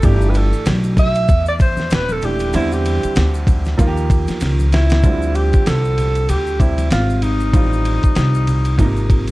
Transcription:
0.02 G1 E3 A3 D4 G4, kick, ride, maracas
0.21 maracas
0.29 B4
0.34 A4, ride, maracas
0.53 maracas
0.65 B1, snare, hi-hat pedal, ride, low conga, maracas
0.84 maracas
0.97 E5, kick, ride, high conga, low conga, maracas
1.15 ride, maracas
1.28 E2, kick, ride, maracas
1.46 D5, maracas
1.59 C5, kick, ride, maracas
1.77 snare, high conga, maracas
1.90 D#1 B4, snare, hi-hat pedal, ride, maracas
2.09 A4, high conga, maracas
2.22 E3 A3 D4 G4, ride, low conga, maracas
2.39 ride, maracas
2.53 E2 D3 G3 C4 E4, ride, maracas
2.72 G4, maracas
2.85 ride, maracas
3.03 muted upright bass stroke, ride, maracas
3.16 D2, snare, hi-hat pedal, ride, low conga, maracas
3.34 maracas
3.47 kick, ride, high conga, low conga, maracas
3.65 snare, maracas
3.78 D#2 D#3 F3 A#3 F4, kick, ride, maracas
3.87 G4
3.97 maracas
4.10 kick, ride, maracas
4.28 muted upright bass stroke, snare, ride, high conga, maracas
4.40 C#2, snare, hi-hat pedal, ride, maracas
4.59 high conga, maracas
4.72 E4, snare, ride, low conga, maracas
4.89 snare, ride, maracas
5.03 D2 D3 F3 G3 C4, kick, ride, maracas
5.22 maracas
5.35 G4, ride, maracas
5.53 kick, ride, maracas
5.66 C2 A4, snare, hi-hat pedal, ride, maracas
5.85 maracas
5.98 ride, low conga, maracas
6.15 ride, maracas
6.29 D2 G4, ride, maracas
6.47 maracas
6.59 C3 G3 C4 E4 G4, kick, ride, maracas
6.78 ride, high conga, maracas
6.91 G#1 F4, snare, hi-hat pedal, ride, maracas
7.10 maracas
7.22 D#4, ride, low conga, maracas
7.40 maracas
7.52 A1 D#3 G3 C4 F4, kick, ride, maracas
7.73 maracas
7.85 ride, maracas
8.03 kick, ride, maracas
8.15 C2, snare, hi-hat pedal, ride, maracas
8.34 maracas
8.47 ride, low conga, maracas
8.65 ride, maracas
8.77 G#1 A#2 F3 A#3 D#4, kick, ride, maracas
8.84 C3
8.97 maracas
9.10 kick, ride, maracas
9.28 ride, high conga, maracas

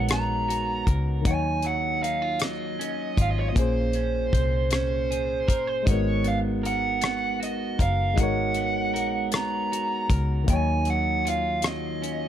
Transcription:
Already playing: A#1 G#3 D#4 F#4 A#4 B4 C#5 F#5
0.09 B3 A#5, cross-stick, closed hi-hat
0.48 F#4, closed hi-hat
0.87 C#2 A#4, kick, closed hi-hat
1.22 D#3 A#3, kick, closed hi-hat
1.26 D#2 D#3 F#3 D#4 G#5
1.31 C#5
1.62 F#3 F#5, closed hi-hat
2.02 D#4 F5, closed hi-hat
2.22 F4
2.40 F#3 D#5, cross-stick, closed hi-hat
2.79 C#4, closed hi-hat
3.17 G#1 F4, kick, closed hi-hat
3.22 F5
3.31 D#5
3.39 C#5
3.49 A#2 D#5
3.55 A#1 A#3 C#4 C5, kick, closed hi-hat
3.59 G#4 C5
3.93 C#4, closed hi-hat
4.33 C2 C5, kick, closed hi-hat
4.71 C#4 C5, cross-stick, closed hi-hat
5.11 G#4, closed hi-hat
5.48 G1 A#4, kick, closed hi-hat
5.67 C5
5.83 G#3 D#4
5.87 G#1 F#4 A#4 C#5, kick, closed hi-hat
5.92 B3
6.24 B3 F5, closed hi-hat
6.63 A#4 F#5, closed hi-hat
7.01 B3, cross-stick, closed hi-hat
7.40 F#4 D#5, closed hi-hat
7.79 F#1 A#4 F5, kick, closed hi-hat
8.14 G#3 D#4
8.18 G#1 F#4 A#4 F#5, kick, closed hi-hat
8.23 C#5
8.54 B3, closed hi-hat
8.94 A#1 A#4, closed hi-hat
9.32 B3, cross-stick, closed hi-hat
9.36 A#5
9.72 F#4, closed hi-hat
10.10 C#2 A#4, kick, closed hi-hat
10.44 D#3 A#3
10.48 D#2 D#3 F#3 D#4 G#5, kick, closed hi-hat
10.53 C#5
10.85 F#3, closed hi-hat
10.90 F#5
11.25 F4, closed hi-hat
11.29 F5
11.62 F#3, cross-stick, closed hi-hat
11.67 D#5
12.02 C#4, closed hi-hat

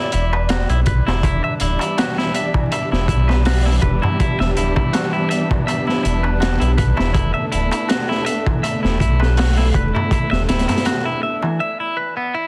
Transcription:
Already playing: E4 D5
0.12 E1 E4, closed hi-hat
0.33 B4, darbuka tek
0.49 F#4, snare, closed hi-hat, darbuka tek
0.69 B1 E4, closed hi-hat, darbuka tek
0.86 B4, kick, closed hi-hat
1.07 E1 E4, snare, darbuka tek
1.23 E1 E3 G3 B3 D4 E4, kick, closed hi-hat, darbuka tek
1.44 E5, darbuka tek
1.60 D1 E4, closed hi-hat
1.79 E4, closed hi-hat, darbuka tek
1.98 F#4, snare, closed hi-hat, darbuka tek
2.18 E4, snare, darbuka tek
2.34 E5, closed hi-hat
2.54 E3, kick, darbuka tek
2.72 E5, closed hi-hat, darbuka tek
2.92 E1 E4, snare, darbuka tek
3.08 B1 E4, kick, closed hi-hat
3.28 B4, snare, darbuka tek
3.45 F#4, snare, open hi-hat, darbuka tek
3.66 E4, snare, darbuka tek
3.82 E1 B4, kick, closed hi-hat
4.02 E4, darbuka tek, darbuka dum
4.20 E4, kick, closed hi-hat, darbuka tek
4.40 E1 E5, snare, darbuka tek
4.57 D1 E4, closed hi-hat
4.76 E4, kick, darbuka tek
4.93 F#4, snare, closed hi-hat, darbuka tek
5.13 E4, darbuka tek
5.30 E5, closed hi-hat
5.50 E3, kick, darbuka tek
5.67 E5, closed hi-hat, darbuka tek
5.87 E4, snare, darbuka tek
6.03 E1 E4, closed hi-hat
6.23 B4, darbuka tek
6.40 F#4, snare, closed hi-hat, darbuka tek
6.60 B1 E4, closed hi-hat, darbuka tek
6.78 B4, kick, closed hi-hat
6.97 E1 E4, snare, darbuka tek
7.14 E1 A3 E4, kick, closed hi-hat, darbuka tek
7.34 E5, darbuka tek
7.52 D1 E4, closed hi-hat
7.71 E4, closed hi-hat, darbuka tek
7.88 F#4, snare, closed hi-hat, darbuka tek
8.09 E4, snare, darbuka tek
8.26 E5, closed hi-hat
8.46 E3, kick, darbuka tek
8.63 E5, closed hi-hat, darbuka tek
8.83 E1 E4, snare, darbuka tek
9.00 B1 E4, kick, closed hi-hat
9.20 B4, snare, darbuka tek
9.37 F#4, snare, open hi-hat, darbuka tek
9.57 E4, snare, darbuka tek
9.74 E1 B4, kick, closed hi-hat
9.95 E4, darbuka tek, darbuka dum
10.11 E4, kick, closed hi-hat, darbuka tek
10.31 E1 E5, snare, darbuka tek
10.49 D1 E4, snare, closed hi-hat
10.59 snare, closed hi-hat
10.68 E4, snare, closed hi-hat, darbuka tek, darbuka dum
10.78 snare, closed hi-hat
10.85 F#4, snare, closed hi-hat, darbuka tek
11.05 E4, darbuka tek
11.23 E5
11.42 E3, darbuka tek
11.60 E5
11.80 E4
11.97 B4
12.17 B3
12.34 E4

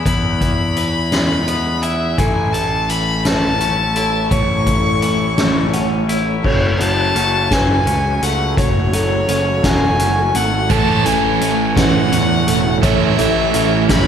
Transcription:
Already playing: E3 G#3 B3 E4
0.04 E2 B5, kick, closed hi-hat
0.41 kick, closed hi-hat
0.76 E3, closed hi-hat
1.12 G#3, snare, closed hi-hat
1.48 B3, closed hi-hat
1.82 E4 E5, closed hi-hat
2.17 A1 A2 A3 E4 A4 C#5 G#5, kick, closed hi-hat
2.53 A5, closed hi-hat
2.89 E3 B5, closed hi-hat
3.25 A3 B4 A5, snare, closed hi-hat
3.60 C#4, closed hi-hat
3.96 E4 A4, closed hi-hat
4.31 A1 A2 C#5 C#6, kick, closed hi-hat
4.67 A4, kick, closed hi-hat
5.02 E3, closed hi-hat
5.38 A3, snare, closed hi-hat
5.73 C#4 F#5, closed hi-hat
6.09 E4, closed hi-hat
6.43 F#1 F#2 A3 F#4 A4 C#5, kick, crash
6.80 F#1 F#3 A5, closed hi-hat
7.15 F#1 C#4, closed hi-hat
7.51 F#1 F#3 B4 G#5, kick, snare, closed hi-hat
7.86 C#2 C#4, closed hi-hat
8.22 C#2 A3 A4 F#5, closed hi-hat
8.57 F#1 F#2 E4 C#5, kick, closed hi-hat
8.93 F#1 F#3 A4, closed hi-hat
9.28 F#1 C#4, closed hi-hat
9.64 E1 F#3 G#5, kick, snare, closed hi-hat
9.99 F#1 C#4 F#5, closed hi-hat
10.35 G#1 A3 F#5, closed hi-hat
10.70 A1 A2 E3 A3 C#4 E4 A4 C#5 A5, kick, closed hi-hat
11.05 A1 E3 G#5, closed hi-hat
11.41 A1 C#4, closed hi-hat
11.76 A1 E3 B4 F#5, kick, snare, closed hi-hat
12.12 E2 C#4, closed hi-hat
12.47 E1 A3 A4, closed hi-hat
12.82 A1 A2 E3 A3 C#4 E4 A4 C#5 E5, kick, closed hi-hat
13.18 A1 E3 A4, closed hi-hat
13.54 A1 C#4, closed hi-hat
13.89 F#1 E3 B5, kick, snare, closed hi-hat

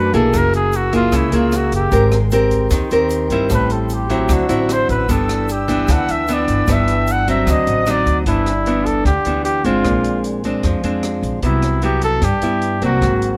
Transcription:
Already playing: F#2 A3 D4 F#4 B4 A5 D6
0.13 B1 A#3 E4 G#4 A4, kick, closed hi-hat, shaker
0.33 F#1 F#3 A#4 G#5 E6, kick, cross-stick, closed hi-hat, shaker
0.37 A#4
0.53 G#4, closed hi-hat, shaker
0.72 F#4, closed hi-hat, shaker
0.93 A#3 E4 F4 G#4, kick, closed hi-hat, shaker
1.12 C#2 C#3, kick, cross-stick, closed hi-hat, shaker
1.16 E4
1.32 C#2 A#3 E4 F4 G#4, closed hi-hat, shaker
1.52 cross-stick, closed hi-hat, shaker
1.56 F#4
1.72 F#1 G4, kick, closed hi-hat, shaker
1.91 G#1 G#3 C4 G4 A#4 G5 C6, kick, closed hi-hat, shaker
2.11 cross-stick, closed hi-hat, shaker
2.31 C4 G4 A#4, closed hi-hat, shaker
2.51 kick, closed hi-hat, shaker
2.70 D#2 D#3, kick, cross-stick, closed hi-hat, shaker
2.90 D#2 C4 G4 A#4, closed hi-hat, shaker
3.10 closed hi-hat, shaker
3.30 G1 G3 C4 E4, kick, closed hi-hat, shaker
3.49 A1 A2 A4, kick, cross-stick, closed hi-hat, shaker
3.54 B4
3.69 A4, closed hi-hat, shaker
3.89 closed hi-hat, shaker
3.94 G4
4.09 F#3 C4 E4, kick, closed hi-hat, shaker
4.28 D2 D3 C5 F#5 E6, kick, cross-stick, closed hi-hat, shaker
4.33 F#4
4.49 A1 F#3 C4 E4, closed hi-hat, shaker
4.69 C5, cross-stick, closed hi-hat, shaker
4.89 A1 B4, kick, closed hi-hat, shaker
5.08 G1 G2 E3 B3 D4 A4 B4 G5, kick, closed hi-hat, shaker
5.28 cross-stick, closed hi-hat, shaker
5.48 G4, closed hi-hat, shaker
5.68 E3 B3 D4, kick, closed hi-hat, shaker
5.88 D2 D3, kick, cross-stick, closed hi-hat, shaker
5.92 F#5
6.08 D2 E5, closed hi-hat, shaker
6.28 E3 B3 D4, closed hi-hat, shaker
6.33 D5
6.48 G1, kick, closed hi-hat, shaker
6.67 G1 G2 E3 B3 D4, kick, cross-stick, closed hi-hat, shaker
6.72 E5
6.88 closed hi-hat, shaker
7.07 closed hi-hat, shaker
7.12 F#5
7.27 F#3 C4 E5, kick, closed hi-hat, shaker
7.46 D2 D3 C5 F#5 D#6, kick, cross-stick, closed hi-hat, shaker
7.51 D#5
7.67 A1, closed hi-hat, shaker
7.86 F#3 C4 D#4, cross-stick, closed hi-hat, shaker
7.91 D5
8.06 D2, kick, closed hi-hat, shaker
8.26 G1 G2 E3 B3 D4 E4, kick, closed hi-hat
8.46 cross-stick, closed hi-hat
8.66 E3 B3 D4, closed hi-hat
8.86 A4, kick, closed hi-hat
9.05 D2 D3 G4, kick, cross-stick, closed hi-hat
9.25 D2 E3 B3 D4, closed hi-hat
9.45 G4, closed hi-hat
9.64 G1 G#3 C4 D4 F4, kick, closed hi-hat
9.84 A#1 A#2, kick, cross-stick, closed hi-hat
10.04 closed hi-hat
10.24 closed hi-hat
10.44 G#3 C4 D4, kick, closed hi-hat
10.63 F2 F3, kick, cross-stick, closed hi-hat
10.84 F2 G#3 C4 D4, closed hi-hat
11.03 cross-stick, closed hi-hat
11.23 A#1, kick, closed hi-hat
11.43 C2 C3 F#3 B3 E4, kick, closed hi-hat
11.62 cross-stick, closed hi-hat
11.82 F#3 B3 E4 G4, closed hi-hat
12.02 A4, kick, closed hi-hat
12.22 G2 G4, kick, cross-stick, closed hi-hat
12.42 G2 B3 E4, closed hi-hat
12.62 closed hi-hat
12.82 C2 F#3 A#3 C4 F#4, kick, closed hi-hat
13.01 G#1 G#2, kick, cross-stick, closed hi-hat
13.22 closed hi-hat

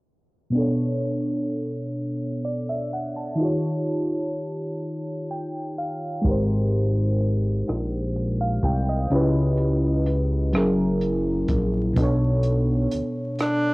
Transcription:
0.50 B2 B3
0.55 D4 A4
0.60 C#5
2.45 D5
2.69 E5
2.93 F#5
3.16 A5
3.35 D#3 D#4
3.40 F4 G4
3.45 C#5
5.31 G5
5.78 F5
6.22 G#1 G#3 D#4, kick, closed hi-hat
6.27 G4 A#4
6.31 C5
6.72 closed hi-hat
7.20 closed hi-hat
7.67 A#1, cross-stick, closed hi-hat
8.16 closed hi-hat
8.41 F5
8.63 C2 G5, kick, closed hi-hat
8.89 D#5
9.10 C#2 C#3 C#4 E4 G4, closed hi-hat
9.15 B4
9.57 closed hi-hat
10.06 closed hi-hat
10.53 F#1 F#3 C#4 E4 G#4, cross-stick, closed hi-hat
10.58 A#4
11.01 closed hi-hat
11.48 A#1, kick, closed hi-hat
11.93 B1 B2 B3, kick, closed hi-hat
11.98 D4 A4
12.03 C#5
12.43 closed hi-hat
12.91 D2, closed hi-hat
13.39 D4, cross-stick, closed hi-hat

